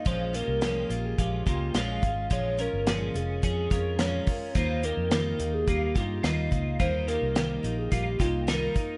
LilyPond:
<<
  \new Staff \with { instrumentName = "Soft synth lead" } { \time 4/4 \key bes \dorian \tempo 4 = 107 c''8 bes'4~ bes'16 aes'16 g'8 f'8 f''4 | des''8 bes'4 aes'8 aes'4 des''4 | c''8 bes'4~ bes'16 aes'16 g'8 f'8 ees''4 | c''8 bes'4~ bes'16 aes'16 g'8 f'8 bes'4 | }
  \new Staff \with { instrumentName = "Clean electric guitar" } { \time 4/4 \key bes \dorian <aes f'>8 <bes g'>8 <bes g'>4 <aes f'>8 <bes g'>8 <aes f'>4 | <aes f'>8 <des' bes'>8 <des' aes'>4 <des' aes'>8 <des' bes'>8 <des' bes'>4 | <bes f'>8 <bes g'>8 <bes g'>4 <bes f'>8 <bes g'>8 <bes f'>4 | <bes f'>8 <bes g'>8 <bes g'>4 <bes f'>8 <bes g'>8 <ees' bes'>4 | }
  \new Staff \with { instrumentName = "Steel-string acoustic guitar" } { \time 4/4 \key bes \dorian <bes, f aes des' f'>8 <aes des' f'>8 <bes, f aes des' f'>8 <aes des' f'>8 <f aes des' f'>8 <aes des' f'>8 <bes, f aes des' f'>8 <aes des' f'>8 | <bes, f aes des' f'>8 <aes des' f'>8 <bes, f aes des' f'>8 <aes des' f'>8 <f aes des' f'>8 <aes des' f'>8 <bes, f aes des' f'>8 <aes des' f'>8 | <ees g bes ees' f'>8 <bes ees' f'>8 <ees g bes ees' f'>8 <bes ees' f'>8 <g bes ees' f'>8 <bes ees' f'>8 <ees g bes ees' f'>8 <bes ees' f'>8 | <ees g bes ees' f'>8 <bes ees' f'>8 <ees g bes ees' f'>8 <bes ees' f'>8 <g bes ees' f'>8 <bes ees' f'>8 <ees g bes ees' f'>8 <bes ees' f'>8 | }
  \new Staff \with { instrumentName = "Fingered electric bass" } { \clef bass \time 4/4 \key bes \dorian bes,,8. c,8. bes,,8 bes,,8 des,8 bes,,8 aes,,8 | bes,,8. g,,8. f,,8 f,8 f,4 r8 | ees,8. f,8. ees,8 ees,8 g,8 ees,8 des,8 | ees,8. c,8. bes,,8 bes,,8 c,4 r8 | }
  \new DrumStaff \with { instrumentName = "Drums" } \drummode { \time 4/4 <hh bd>8 hh8 <hh sn>8 hh8 <hh bd>8 <hh bd>8 <hh sn>8 <hh bd>8 | <hh bd>8 hh8 <hh sn>8 hh8 <hh bd>8 <hh bd sn>8 <hh sn>8 <hho bd>8 | <hh bd>8 hh8 <hh sn>8 hh8 <hh bd>8 <hh bd sn>8 <hh sn>8 <hh bd>8 | <hh bd>8 hh8 <hh sn>8 hh8 <hh bd>8 <hh bd sn>8 <hh sn>8 <hh bd>8 | }
>>